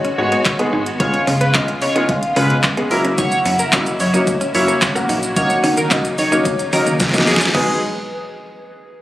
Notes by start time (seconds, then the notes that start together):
Already playing: D#3 G#3 B3 F#4 C#5
0.05 C#4, closed hi-hat
0.18 G#2 G#3 B3 D#4 F#4 C#5, muted clean electric guitar stroke
0.32 B3, closed hi-hat
0.45 F#1, muted clean electric guitar stroke, kick, clap, closed hi-hat
0.59 G#3 B3 D#4 G#4, closed hi-hat
0.73 G#1 D#4
0.86 closed hi-hat
1.00 C#2 C#3 G#3 B3 C#4 F4 C#5 F5, kick, closed hi-hat
1.14 muted clean electric guitar stroke, closed hi-hat
1.27 C#3 C#4, open hi-hat
1.41 B3 B4, closed hi-hat
1.54 C#2 G#3 B3 C#4 F4 D#5, kick, clap, closed hi-hat
1.68 muted clean electric guitar stroke, closed hi-hat
1.82 C#3 C#5 D#5, open hi-hat
1.96 G#3 B3 C#4 D#4 F4, closed hi-hat
2.09 C#2 F5, muted clean electric guitar stroke, kick, closed hi-hat
2.23 closed hi-hat
2.36 C#3 G#3 B3 C#4 F4 B4, open hi-hat
2.50 B3, closed hi-hat
2.63 C#2, kick, clap, closed hi-hat
2.77 G#3 B3 C#4 G#4, closed hi-hat
2.91 F#1 F#3 A#3 C#4 E4 A#4, muted clean electric guitar stroke, open hi-hat
3.05 C#4, closed hi-hat
3.18 D#4 C#5 F#5, kick, closed hi-hat, shaker
3.32 closed hi-hat, shaker
3.45 F#2 C#4, open hi-hat, shaker
3.59 A#4, muted clean electric guitar stroke, closed hi-hat, shaker
3.73 F#1 F#3 A#3 C#4 E4 D#5, kick, clap, closed hi-hat, shaker
3.86 muted clean electric guitar stroke, closed hi-hat, shaker
4.00 F#2 C#5, clap, open hi-hat, shaker
4.14 F#3 A#3 C#4 D#4, closed hi-hat, shaker
4.27 F#1 C#5, kick, closed hi-hat, shaker
4.41 C#4, closed hi-hat, shaker
4.54 F#2 F#3 A#3 C#4 E4 C#5, muted clean electric guitar stroke, open hi-hat, shaker
4.68 A#3, closed hi-hat, shaker
4.82 G#1, muted clean electric guitar stroke, kick, clap, closed hi-hat, shaker
4.95 F#3 A#3 C#4 F#4, closed hi-hat, shaker
5.09 A#1 D#4, open hi-hat, shaker
5.23 closed hi-hat, shaker
5.36 D#2 C#3 F#3 A#3 C#4 D#4 C#5 F#5, kick, closed hi-hat, shaker
5.50 muted clean electric guitar stroke, closed hi-hat, shaker
5.64 D#3 C#4, open hi-hat, shaker
5.77 A#3 A#4, closed hi-hat, shaker
5.91 D#2 F#3 A#3 C#4 D#4 D#5, kick, clap, closed hi-hat, shaker
6.05 muted clean electric guitar stroke, closed hi-hat, shaker
6.18 D#3 C#5, open hi-hat, shaker
6.32 F#3 A#3 C#4 D#4, closed hi-hat, shaker
6.45 D#2, muted clean electric guitar stroke, kick, closed hi-hat, shaker
6.59 closed hi-hat, shaker
6.73 D#3 F#3 A#3 C#4 D#4 A#4, open hi-hat, shaker
6.87 A#3, closed hi-hat, shaker
7.00 C#2, kick, snare, clap, closed hi-hat, shaker
7.09 snare
7.13 F#3 A#3 C#4 D#4, closed hi-hat, shaker
7.18 snare
7.27 D#2 G#4, muted clean electric guitar stroke, snare, open hi-hat, shaker
7.36 snare
7.41 C#4, closed hi-hat, shaker
7.46 snare
7.54 G#1 B2 F#3 G#3 B3 D#4 G#4 B4, kick, clap, crash